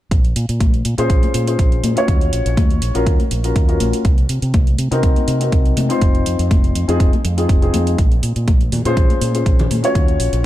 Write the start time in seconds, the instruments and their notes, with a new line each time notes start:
0.11 fingered electric bass A#1, kick, closed hi-hat
0.25 closed hi-hat
0.36 fingered electric bass A#2, closed hi-hat
0.49 fingered electric bass A#2, closed hi-hat
0.60 fingered electric bass A#1, kick, closed hi-hat, high conga
0.74 closed hi-hat
0.85 fingered electric bass A#2, closed hi-hat
0.98 fingered electric bass A#2, grand piano C#4 F4 G#4 C5, closed hi-hat
1.10 fingered electric bass A#1, kick, closed hi-hat
1.23 closed hi-hat, high conga
1.34 fingered electric bass A#2, closed hi-hat
1.47 grand piano C#4 F4 G#4 C5, closed hi-hat
1.59 fingered electric bass A#1, kick, closed hi-hat
1.72 closed hi-hat
1.83 fingered electric bass A#2, closed hi-hat, high conga
1.96 grand piano C#4 F4 F#4 C#5, closed hi-hat
2.08 fingered electric bass D#2, kick, closed hi-hat
2.21 closed hi-hat
2.33 fingered electric bass A#1, closed hi-hat
2.46 fingered electric bass A#1, closed hi-hat
2.57 fingered electric bass D#2, kick, closed hi-hat, high conga
2.71 closed hi-hat
2.82 fingered electric bass A#1, closed hi-hat
2.94 fingered electric bass A#1, grand piano C#4 F4 F#4 A#4, closed hi-hat
3.07 fingered electric bass D#2, kick, closed hi-hat
3.20 closed hi-hat, high conga
3.31 fingered electric bass A#1, closed hi-hat
3.44 grand piano C#4 F4 F#4 A#4, closed hi-hat
3.56 fingered electric bass D#2, kick, closed hi-hat
3.68 grand piano C#4 F4 F#4 A#4, closed hi-hat
3.80 fingered electric bass A#1, closed hi-hat, high conga
3.93 closed hi-hat
4.05 fingered electric bass C2, kick, closed hi-hat
4.18 closed hi-hat
4.29 fingered electric bass C3, closed hi-hat
4.42 fingered electric bass C3, closed hi-hat
4.54 fingered electric bass C2, kick, closed hi-hat, high conga
4.67 closed hi-hat
4.78 fingered electric bass C3, closed hi-hat
4.91 fingered electric bass C3, grand piano C4 D#4 F#4 A#4, closed hi-hat
5.03 fingered electric bass C2, kick, closed hi-hat
5.16 closed hi-hat, high conga
5.28 fingered electric bass C3, closed hi-hat
5.40 grand piano C4 D#4 F#4 A#4, closed hi-hat
5.52 fingered electric bass C2, kick, closed hi-hat
5.66 closed hi-hat
5.77 fingered electric bass C3, closed hi-hat, high conga
5.89 grand piano C4 D#4 F4 C5, closed hi-hat
6.01 fingered electric bass F1, kick, closed hi-hat
6.15 closed hi-hat
6.26 fingered electric bass F2, closed hi-hat
6.39 fingered electric bass F2, closed hi-hat
6.51 fingered electric bass F1, kick, closed hi-hat, high conga
6.64 closed hi-hat
6.75 fingered electric bass F2, closed hi-hat
6.88 fingered electric bass F2, grand piano C4 D#4 F4 G#4, closed hi-hat
7.00 fingered electric bass F1, kick, closed hi-hat
7.13 closed hi-hat, high conga
7.25 fingered electric bass F2, closed hi-hat
7.37 grand piano C4 D#4 F4 G#4, closed hi-hat
7.49 fingered electric bass F1, kick, closed hi-hat
7.62 grand piano C4 D#4 F4 G#4, closed hi-hat
7.74 fingered electric bass F2, closed hi-hat, high conga
7.87 closed hi-hat
7.98 fingered electric bass A#1, kick, closed hi-hat
8.12 closed hi-hat
8.23 fingered electric bass A#2, open hi-hat
8.36 fingered electric bass A#2, closed hi-hat
8.48 fingered electric bass A#1, kick, closed hi-hat, high conga
8.61 closed hi-hat
8.72 fingered electric bass A#2, open hi-hat, low conga
8.85 fingered electric bass A#2, grand piano C#4 F4 G#4 C5, closed hi-hat, low conga
8.97 fingered electric bass A#1, kick, closed hi-hat
9.10 closed hi-hat, high conga
9.21 fingered electric bass A#2, open hi-hat
9.34 grand piano C#4 F4 G#4 C5, closed hi-hat
9.46 fingered electric bass A#1, kick, closed hi-hat
9.59 closed hi-hat, low conga
9.71 fingered electric bass A#2, open hi-hat, high conga
9.83 grand piano C#4 F4 F#4 C#5, closed hi-hat
9.95 fingered electric bass D#2, kick, closed hi-hat
10.08 closed hi-hat
10.20 fingered electric bass A#1, open hi-hat
10.33 fingered electric bass A#1, closed hi-hat